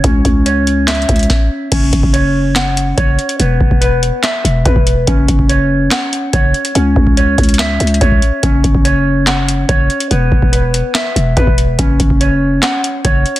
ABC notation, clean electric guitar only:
X:1
M:4/4
L:1/8
Q:1/4=143
K:Emix
V:1 name="Clean electric guitar"
C2 c2 e4 | C2 c2 f2 c2 | B,2 B2 e2 B2 | C2 c2 f2 c2 |
C2 c2 e2 c2 | C2 c2 f2 c2 | B,2 B2 e2 B2 | C2 c2 f2 c2 |]